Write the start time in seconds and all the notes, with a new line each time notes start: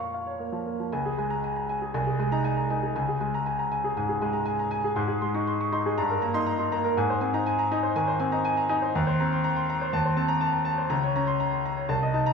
Already playing: A#2 F3 A#3 F4 A#4 C#5 F5
0.00 C#6
0.14 F5
0.27 C#5
0.40 A#3
0.52 F3
0.66 A#3
0.80 F3
0.92 C#2 G#5
1.05 G#4
1.18 G#3 G#5
1.30 A#5
1.44 G#5
1.56 A#5
1.69 G#5
1.82 G#4
1.94 C2 G#5
2.06 G#4
2.19 G#3 G#5
2.32 D#4 A#5
2.44 G#5
2.57 A#5
2.70 D#4 G#5
2.83 G#4
2.96 C#2 G#5
3.09 G#4
3.20 G#3 G#5
3.34 A#5
3.46 G#5
3.59 A#5
3.72 G#5
3.84 G#4
3.97 G#2 G#5
4.09 G#4
4.22 G#3 G#5
4.33 A#5
4.46 G#5
4.59 A#5
4.71 G#5
4.84 G#4
4.96 G#2 C6
5.08 G#4
5.22 G#3 C6
5.35 D#4 C#6
5.47 C6
5.61 C#6
5.72 D#4 C6
5.86 G#4
5.98 G2 A#5
6.10 A#4
6.22 A#3 A#5
6.34 D#4 C6
6.46 A#5
6.59 D#4 C6
6.72 A#3 A#5
6.84 A#4
6.97 G#2 G#5
7.10 C5
7.21 C4 G#5
7.34 D#4 A#5
7.46 G#5
7.59 A#5
7.72 D#4 G#5
7.83 C5
7.96 D#3 G#5
8.08 C5
8.20 C4 G#5
8.32 D#4 A#5
8.45 G#5
8.57 A#5
8.69 D#4 G#5
8.82 C5
8.95 D#2 A#5
9.07 C5
9.20 C4 A#5
9.32 C6
9.44 A#5
9.57 C6
9.69 A#5
9.82 C5
9.93 D#2 A5
10.05 C5
10.17 C4 A5
10.28 A#5
10.41 A5
10.53 A#5
10.65 A5
10.78 C5
10.90 C#2 A#5
11.03 C#5
11.16 C#4 A#5
11.27 C6
11.40 A#5
11.53 C6
11.65 A#5
11.77 C#5
11.89 C2 A5
12.03 D#5
12.14 D#4 A5
12.26 A#5